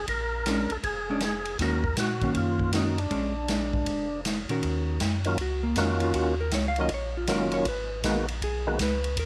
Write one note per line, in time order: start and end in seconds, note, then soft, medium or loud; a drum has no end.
0.08 0.66 A#1 medium
0.08 0.73 A#4 medium
0.08 kick soft
0.08 ride medium
0.46 0.68 G#3 medium
0.46 0.68 C#4 medium
0.46 0.69 D4 medium
0.46 snare medium
0.46 hi-hat pedal medium
0.46 ride medium
0.70 0.77 A#1 soft
0.70 0.77 A4 medium
0.70 ride soft
0.83 1.55 F1 medium
0.83 1.23 G#4 medium
0.83 kick soft
0.83 ride medium
1.10 1.21 G#3 medium
1.10 1.21 C#4 medium
1.10 1.21 D4 medium
1.20 1.58 G#4 medium
1.20 snare medium
1.20 hi-hat pedal medium
1.20 ride medium
1.45 ride soft
1.58 1.94 D#2 medium
1.58 1.82 D#3 medium
1.58 1.82 A#3 medium
1.58 1.83 C#4 medium
1.58 1.83 F#4 medium
1.58 1.96 A#4 medium
1.58 kick soft
1.58 snare soft
1.58 ride medium
1.84 kick soft
1.96 2.32 A#2 medium
1.96 2.34 F#4 medium
1.96 snare medium
1.96 hi-hat pedal medium
1.96 ride medium
2.21 2.71 D#3 medium
2.21 2.71 A#3 medium
2.21 2.71 C#4 medium
2.21 kick medium
2.21 ride soft
2.34 3.07 F#2 medium
2.34 2.72 F4 medium
2.34 kick soft
2.34 ride medium
2.59 kick soft
2.73 2.95 D#3 medium
2.73 2.96 A#3 soft
2.73 2.96 C#4 medium
2.73 3.00 D#4 medium
2.73 2.96 F#4 medium
2.73 snare medium
2.73 hi-hat pedal soft
2.73 ride medium
2.98 4.21 D4 medium
2.98 ride soft
3.11 3.83 A#1 medium
3.11 3.33 G#3 medium
3.11 3.33 C#4 medium
3.11 3.33 D4 medium
3.11 kick soft
3.11 ride medium
3.48 4.07 G#3 medium
3.48 4.07 D4 medium
3.48 snare medium
3.48 hi-hat pedal soft
3.48 ride medium
3.73 kick soft
3.86 4.45 F1 medium
3.86 kick soft
3.86 ride medium
4.25 snare medium
4.25 hi-hat pedal medium
4.25 ride medium
4.49 4.61 A#2 medium
4.49 4.98 D#3 medium
4.49 4.98 C#4 medium
4.49 4.99 F#4 medium
4.49 4.99 A#4 medium
4.49 ride soft
4.62 4.99 D#2 medium
4.62 kick soft
4.62 ride medium
5.00 5.37 F#2 medium
5.00 kick soft
5.00 snare medium
5.00 hi-hat pedal soft
5.00 ride medium
5.24 5.37 D#3 medium
5.24 5.38 F#3 medium
5.24 5.38 A#3 medium
5.24 5.38 C#4 medium
5.24 5.38 F4 medium
5.24 ride soft
5.38 5.75 C#2 medium
5.38 5.64 F#4 medium
5.38 kick soft
5.38 ride medium
5.63 5.79 A#3 medium
5.76 6.13 F2 medium
5.76 6.34 D#3 medium
5.76 6.35 A#3 medium
5.76 6.01 C#4 medium
5.76 6.35 C#4 medium
5.76 6.35 F4 medium
5.76 6.35 F#4 medium
5.76 kick soft
5.76 snare medium
5.76 hi-hat pedal medium
5.76 ride medium
6.00 6.14 F4 medium
6.00 ride soft
6.14 6.51 D#2 medium
6.14 6.39 F#4 medium
6.14 kick soft
6.14 ride medium
6.41 6.53 A#4 medium
6.51 6.89 C#2 medium
6.51 6.66 C#5 medium
6.51 kick soft
6.51 snare medium
6.51 hi-hat pedal medium
6.51 ride medium
6.68 6.79 F5 medium
6.76 6.89 D#3 medium
6.76 6.90 F#3 medium
6.76 6.90 A#3 medium
6.76 6.90 C#4 medium
6.76 ride soft
6.80 6.90 F4 medium
6.80 6.91 D#5 medium
6.89 7.27 A#1 medium
6.89 kick soft
6.89 ride medium
6.94 7.16 C#5 medium
7.17 7.29 F4 soft
7.27 7.65 F#1 medium
7.27 7.66 D#3 medium
7.27 7.66 F#3 medium
7.27 7.66 A#3 medium
7.27 7.66 C#4 medium
7.27 7.67 F4 medium
7.27 7.53 A#4 medium
7.27 kick soft
7.27 snare medium
7.27 hi-hat pedal medium
7.27 ride medium
7.52 7.66 C#5 loud
7.52 ride soft
7.65 8.02 G#1 medium
7.65 8.03 B4 medium
7.65 kick soft
7.65 ride medium
8.04 8.41 A#1 medium
8.04 8.26 D#3 medium
8.04 8.26 G#3 medium
8.04 8.26 A#3 medium
8.04 8.26 B3 medium
8.04 8.27 F#4 medium
8.04 kick soft
8.04 snare medium
8.04 hi-hat pedal medium
8.04 ride medium
8.28 ride soft
8.41 8.78 B1 medium
8.41 8.78 G#4 medium
8.41 kick soft
8.41 ride medium
8.67 8.79 D#3 medium
8.67 8.79 G#3 medium
8.67 8.79 A#3 medium
8.67 8.79 B3 medium
8.67 8.79 F#4 medium
8.79 9.16 C#2 medium
8.79 9.16 B4 medium
8.79 kick soft
8.79 snare medium
8.79 hi-hat pedal medium
8.79 ride medium
9.04 ride soft
9.17 9.26 D#2 medium
9.17 9.26 A#4 medium
9.17 kick soft
9.17 ride medium